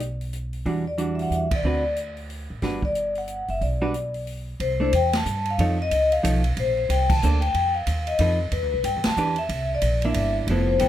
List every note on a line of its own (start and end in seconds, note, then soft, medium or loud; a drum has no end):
0.00 0.62 B1 medium
0.00 closed hi-hat soft
0.21 open hi-hat soft
0.33 closed hi-hat soft
0.53 open hi-hat soft
0.65 1.27 E2 medium
0.65 0.84 E3 soft
0.65 0.84 G3 soft
0.65 0.84 D4 soft
0.65 0.85 F#4 medium
0.65 kick soft
0.65 open hi-hat soft
0.87 1.13 D5 medium
0.98 1.47 E3 soft
0.98 1.47 G3 soft
0.98 1.48 D4 soft
0.98 1.48 F#4 medium
0.98 closed hi-hat medium
1.15 1.20 E5 medium
1.15 open hi-hat soft
1.22 1.34 F#5 medium
1.31 1.62 E2 medium
1.31 closed hi-hat soft
1.35 1.54 E5 medium
1.51 kick medium
1.51 ride medium
1.55 1.96 D5 medium
1.63 2.46 D2 medium
1.63 1.83 D3 soft
1.63 1.83 C4 medium
1.63 1.84 F#4 soft
1.63 1.84 B4 medium
1.96 closed hi-hat soft
2.17 open hi-hat soft
2.30 open hi-hat soft
2.50 2.62 A1 medium
2.62 3.45 G1 medium
2.62 2.81 G3 soft
2.62 2.81 D4 medium
2.62 2.81 F#4 medium
2.62 2.82 B4 medium
2.62 kick soft
2.62 snare soft
2.62 open hi-hat soft
2.82 3.18 D5 medium
2.82 kick soft
2.95 closed hi-hat soft
3.15 3.51 F#5 medium
3.15 open hi-hat soft
3.28 closed hi-hat medium
3.48 3.61 F#1 medium
3.48 3.63 E5 medium
3.48 open hi-hat soft
3.61 4.56 B1 medium
3.61 4.24 D5 medium
3.61 kick soft
3.61 open hi-hat soft
3.82 3.93 G3 medium
3.82 3.93 D4 medium
3.82 3.93 F#4 medium
3.82 3.94 B4 medium
3.94 closed hi-hat soft
4.14 open hi-hat soft
4.27 open hi-hat soft
4.60 4.92 C2 medium
4.60 4.79 C5 medium
4.60 kick soft
4.60 ride medium
4.80 4.91 A3 medium
4.80 4.92 D4 medium
4.80 4.93 E4 medium
4.80 4.94 C5 medium
4.93 5.25 E2 medium
4.93 5.13 G5 medium
4.93 kick soft
4.93 hi-hat pedal medium
4.93 ride medium
5.13 5.49 A5 loud
5.13 snare medium
5.13 ride medium
5.25 5.57 G2 medium
5.25 hi-hat pedal medium
5.45 ride soft
5.51 5.79 F5 loud
5.58 5.90 F2 medium
5.58 5.77 F3 medium
5.58 5.77 D#4 medium
5.58 5.77 A4 medium
5.58 5.77 C#5 medium
5.58 kick soft
5.58 ride medium
5.82 6.11 D#5 loud
5.91 6.23 C#2 medium
5.91 kick soft
5.91 hi-hat pedal medium
5.91 ride medium
6.12 6.42 F5 loud
6.12 ride soft
6.23 6.56 B1 medium
6.23 6.42 F3 medium
6.23 6.42 D#4 medium
6.23 6.42 A4 medium
6.23 6.42 C#5 medium
6.23 kick soft
6.23 hi-hat pedal medium
6.23 ride medium
6.44 ride soft
6.57 6.88 A#1 loud
6.57 6.76 C5 loud
6.57 kick soft
6.57 ride medium
6.77 6.89 C5 medium
6.89 7.21 C2 medium
6.89 7.10 G5 medium
6.89 kick soft
6.89 hi-hat pedal medium
6.89 ride medium
7.10 7.43 A5 loud
7.10 kick medium
7.10 crash medium
7.22 7.54 D2 loud
7.22 7.41 A#3 medium
7.22 7.41 D4 medium
7.22 7.41 A4 medium
7.22 7.41 C5 medium
7.22 hi-hat pedal medium
7.41 7.71 G5 medium
7.41 ride soft
7.54 7.86 F2 medium
7.54 kick soft
7.54 ride medium
7.75 8.08 F5 medium
7.87 8.19 D#2 medium
7.87 kick soft
7.87 hi-hat pedal soft
7.87 ride medium
8.07 8.38 D#5 medium
8.07 ride soft
8.19 8.51 F2 loud
8.19 8.38 F3 soft
8.19 8.38 D#4 medium
8.19 8.38 A4 medium
8.19 8.38 B4 medium
8.19 kick soft
8.19 ride medium
8.52 8.62 E2 medium
8.52 8.71 B4 medium
8.52 kick soft
8.52 ride medium
8.62 8.73 D2 medium
8.72 8.83 B1 medium
8.72 8.85 B4 medium
8.84 8.96 G2 medium
8.84 9.03 G5 medium
8.84 kick soft
8.84 hi-hat pedal medium
8.84 ride medium
8.96 9.05 E2 medium
9.04 9.16 D2 medium
9.04 9.39 A5 loud
9.04 snare medium
9.04 ride medium
9.16 9.48 E2 medium
9.16 9.35 E3 soft
9.16 9.36 D4 medium
9.16 9.36 G4 medium
9.16 9.36 B4 medium
9.16 hi-hat pedal medium
9.36 9.68 E5 loud
9.36 ride soft
9.49 9.81 C2 loud
9.49 kick soft
9.49 ride medium
9.75 10.03 D5 medium
9.81 10.14 A#1 medium
9.81 kick soft
9.81 hi-hat pedal medium
9.81 ride medium
10.02 10.46 A#3 medium
10.02 10.47 D4 medium
10.02 10.47 E4 medium
10.02 10.34 E5 loud
10.02 ride soft
10.14 10.46 G1 loud
10.14 kick soft
10.14 ride medium
10.47 10.79 F1 medium
10.47 10.79 F3 medium
10.47 10.80 B3 medium
10.47 10.80 E4 medium
10.47 10.59 C5 medium
10.47 kick soft
10.47 ride medium
10.51 10.80 A4 medium
10.69 10.80 C5 medium
10.79 10.88 A1 medium
10.79 10.88 F3 medium
10.79 10.88 B3 medium
10.79 10.88 E4 medium
10.79 10.88 A4 medium
10.79 10.88 G5 medium
10.79 kick soft
10.79 hi-hat pedal medium
10.79 ride medium